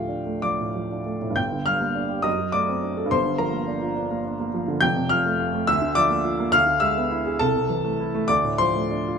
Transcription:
upright piano
Already playing: D2 A2 F3 A3 F4 G4 F5 G5
0.08 D4
0.26 A3
0.42 F3 D5 D6
0.60 A2
0.76 F3
0.91 D4
1.06 A3
1.22 A2
1.30 G2
1.35 G1 G5 G6
1.52 D3
1.66 G3 F5 F6
1.81 A#3
1.95 D4
2.10 G4
2.22 F#2 D#5 D#6
2.39 F#3
2.52 A3 D5 D6
2.68 C4
2.83 D4
2.97 A4
3.06 G2
3.11 G1 C5 C6
3.25 D3
3.38 F3 A#4 A#5
3.53 A#3
3.68 D4
3.82 F4
3.96 D4
4.11 A#3
4.25 D4
4.40 A#3
4.54 F3
4.68 D3
4.81 F1 F2 G5 G6
4.96 C3
5.09 F3 F5 F6
5.26 A3
5.39 F4
5.54 A3
5.67 D2 E5 E6
5.82 D3
5.95 F3 D5 D6
6.10 A#3
6.24 F4
6.40 A#3
6.52 D2 F5 F6
6.66 D3
6.80 G#3 E5 E6
6.97 B3
7.11 E4
7.26 G#4
7.39 C2 A4 A5
7.56 C3
7.70 E3
7.85 A3
8.00 E4
8.15 A3
8.28 D2 D5 D6
8.44 A2
8.58 F3 C5 C6
8.75 A3
8.91 D4
9.08 F4

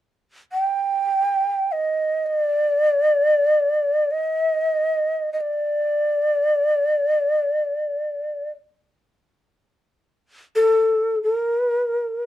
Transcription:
shakuhachi
0.52 G5
1.72 D#5
2.26 D#5
2.38 D5
4.11 D#5
5.33 D#5
5.41 D5
10.55 A4
11.23 A#4

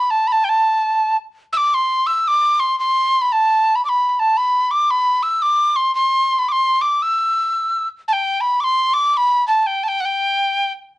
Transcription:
tin whistle
Already playing: B5
0.10 A5
0.27 B5
0.32 A5
0.44 G5
0.49 A5
1.53 E6
1.57 D6
1.74 C6
2.07 E6
2.28 D6
2.60 C6
2.80 C6
3.22 B5
3.33 A5
3.76 B5
3.85 D6
3.89 B5
4.09 B5
4.19 A5
4.37 B5
4.71 D6
4.90 B5
5.23 E6
5.42 D6
5.76 C6
5.95 C6
6.39 B5
6.49 C6 D6
6.81 D6
7.02 E6
8.08 A5
8.13 G5
8.41 B5
8.61 C6 D6
8.94 D6
9.14 B5 D6
9.47 A5
9.62 A5
9.66 G5
9.83 A5
9.88 G5
10.00 F#5
10.05 G5

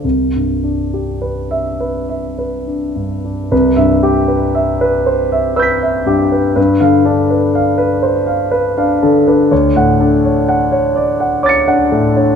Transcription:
grand piano
0.04 C2
0.35 G2
0.63 D4
0.94 G4
1.22 B4
1.51 E5
1.80 B4
2.09 E5
2.38 B4
2.67 D4
2.96 G2
3.25 D4
3.52 C2 B4
3.76 G2 E5
4.03 G4
4.28 B4
4.55 E5
4.81 B4
5.06 C5
5.32 E5
5.56 B4 E6 G6
5.62 B6
5.82 E5
6.06 G2 G4
6.32 B4
6.56 G2 B4
6.80 D3 F5
7.05 D4 A4
7.31 B4
7.55 F5
7.78 B4
8.03 C5
8.27 F5
8.51 B4
8.77 D4 F5
9.03 D3 A4
9.27 D4 B4
9.51 D2 C#5
9.76 A2 F#5
10.00 D4 A4
10.25 C#5
10.49 F#5
10.72 C#5
10.96 D5
11.20 F#5
11.43 C#5 D6 A6
11.49 C#7
11.68 D4 F#5
11.92 A2 A4
12.16 D4 C#5

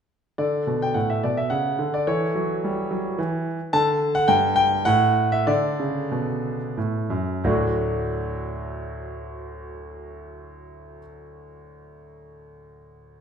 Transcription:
grand piano
0.38 D3 A4 D5
0.67 B2
0.82 G5
0.94 A2 F#5
1.10 E5
1.24 B2 D5
1.37 E5
1.50 C#3 F#5
1.79 D3
1.94 D5
2.07 E3 A4 C#5
2.35 F#3
2.64 G3
2.91 F#3
3.18 E3
3.73 D3 A4 A5
4.15 F#5
4.28 G2 G5
4.56 G5
4.85 A2 F#5
5.32 E5
5.47 D3 A4 D5
5.80 C#3
6.12 B2
6.77 A2
7.10 F#2
7.44 D2 A2 F#3 A3 D4 F#4

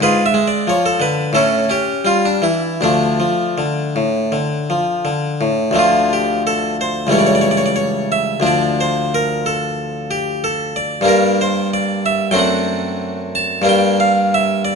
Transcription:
harpsichord
0.01 G#2 F4 G#4 B4
0.26 E5
0.34 G#3
0.48 D5
0.67 F3 C#5
0.86 A4
1.00 D3 B4
1.33 A2 C#4 E4 A4
1.70 C#4 G4
2.05 G3 F4
2.25 D4
2.42 E3 E4
2.81 D2 F3 A3 D4
3.20 F3
3.58 D3
3.96 A2
4.32 D3
4.70 F3
5.05 D3
5.41 A2
5.71 D2 D3 F3
5.76 A3 F4
6.13 G4
6.47 A4
6.81 C5
7.07 C#2 E3 G3
7.11 A3 C#5
7.19 D5
7.26 C#5
7.35 D5
7.41 C#5
7.51 D5
7.57 C#5
7.66 D5
7.76 C#5
8.12 E5
8.40 D2 F3 D4
8.47 D5
8.81 C5
9.14 A#4
9.46 A4
10.11 G4
10.44 A4
10.76 D5
11.01 G2 G3 A#3
11.05 D4 A#4
11.41 C5
11.74 D5
12.06 E5
12.31 F#2 A3 C4 G5
12.36 D4 F#5
13.35 A5
13.62 G2 G3 A#3 D4
13.69 G5
14.00 F5
14.34 E5
14.65 D5

